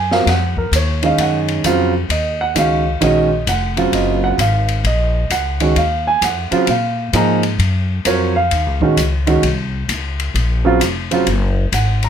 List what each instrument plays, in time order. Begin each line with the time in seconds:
Already playing: upright bass F#2, grand piano G#5
0.11 grand piano F#3 C4 F4 A#4 F5, snare
0.26 upright bass F2, grand piano F#5, snare, ride
0.57 grand piano A#4, kick
0.72 upright bass D#2, grand piano C#5, hi-hat pedal, ride
1.02 grand piano D#3 G#3 C#4 D#4 F5, ride
1.18 upright bass F#2, grand piano F#5, ride
1.48 ride
1.64 upright bass F2, grand piano C#3 F#3 C4 F4, hi-hat pedal, ride
2.09 upright bass D#2, grand piano D#5, ride
2.41 grand piano F#5
2.55 upright bass C#2, grand piano D#3 G#3 C#4 F#4 F5, hi-hat pedal, ride
3.01 upright bass A#1, grand piano D#3 G#3 C#4 F#4 D#5, ride
3.47 upright bass F1, grand piano F#5, hi-hat pedal, ride
3.77 grand piano C#3 F#3 C4 F4, ride
3.92 upright bass F#1, grand piano D#5, ride
4.24 grand piano F#5
4.38 upright bass G#1, grand piano F5, hi-hat pedal, ride
4.68 ride
4.84 upright bass A#1, grand piano D#5, ride
5.30 upright bass C#2, grand piano F#5, hi-hat pedal, ride
5.60 grand piano D#3 G#3 C#4 F#4, ride
5.76 upright bass D#2, grand piano F5, ride
6.07 grand piano G#5
6.22 upright bass F2, grand piano F#5, hi-hat pedal, ride
6.51 grand piano C#3 F#3 C4 F4, muted upright bass stroke, ride
6.67 upright bass A#2, grand piano F5, ride
7.13 upright bass G#2, grand piano F3 A#3 D#4 G#4 A#5, hi-hat pedal, ride
7.43 ride
7.59 upright bass F#2, ride
8.05 upright bass F2, grand piano F#3 C4 F4 A#4 C#5, hi-hat pedal, ride
8.36 grand piano F5
8.51 upright bass D#2, ride
8.66 upright bass C#2
8.81 upright bass A#1, grand piano D#3 G#3 C#4 F#4, kick
8.97 upright bass C#2, hi-hat pedal, ride
9.27 grand piano D#3 G#3 C#4 F#4, ride
9.43 upright bass C2, ride
9.88 upright bass C#2, hi-hat pedal, ride
10.20 ride
10.34 upright bass A#1, ride
10.65 grand piano C#3 F#3 C4 F4
10.80 upright bass F1, hi-hat pedal, ride
11.11 grand piano C#3 F#3 C4 F4, ride
11.26 upright bass F#1, ride
11.72 upright bass G#1, grand piano F#5, hi-hat pedal, ride
12.03 grand piano A#5, ride